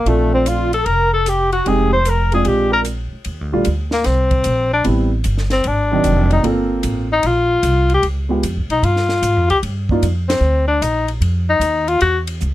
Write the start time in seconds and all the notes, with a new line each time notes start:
Already playing: A#3
0.06 A#1 A3 C4 D4 F4, ride
0.33 C4
0.46 F4, hi-hat pedal, ride
0.73 A4, ride
0.86 F1 A#4, ride
1.13 A4
1.26 G4, hi-hat pedal, ride
1.52 F#4, ride
1.66 F1 G#3 C4 D#4 G4 G#4, ride
1.93 C5
2.05 A#4, hi-hat pedal, ride
2.10 A#4
2.32 G#3 C4 D4 F4 G#4, ride
2.45 A#1 G4, ride
2.72 A#4
2.85 hi-hat pedal, ride
3.13 muted upright bass stroke
3.25 D#2, ride
3.41 D2
3.52 A#1 G3 A3 D4 F4
3.65 D2, hi-hat pedal, ride
3.91 A#3, snare
4.04 C2 C4, snare, ride
4.31 kick, ride
4.44 A#1, hi-hat pedal, ride
4.73 D4
4.84 A1 G3 B3 C4 E4, ride
5.24 G1, hi-hat pedal, ride
5.38 snare
5.50 C4, snare, ride
5.64 G#1 D4, ride
5.91 D#3 F#3 C4 D4
6.04 F1, hi-hat pedal, ride
6.31 D#4, ride
6.43 G1 A#3 C4 F4 A4, ride
6.83 A1, hi-hat pedal, ride
7.13 D#4
7.23 A#1, ride
7.27 F4
7.63 C2, hi-hat pedal, ride
7.90 ride
7.94 G4
8.03 C#2, ride
8.29 G#3 B3 F4 G4
8.43 F2, hi-hat pedal, ride
8.57 C#2
8.69 B1 D#4, ride
8.83 G2 F4, ride
8.96 snare
9.09 snare
9.22 G#2, hi-hat pedal, ride
9.37 F2
9.50 C#2 G4, ride
9.63 G2, ride
9.89 A#3 D4 D#4 F4, kick
10.02 F2, hi-hat pedal, ride
10.29 C4, snare, ride
10.41 D2
10.68 D4
10.81 A#1 D#4, hi-hat pedal, ride
11.08 ride
11.21 F2, ride
11.50 D#4
11.60 D#2, hi-hat pedal, ride
11.88 F4, ride
12.01 E2 F#4, ride
12.27 ride
12.41 C#2, hi-hat pedal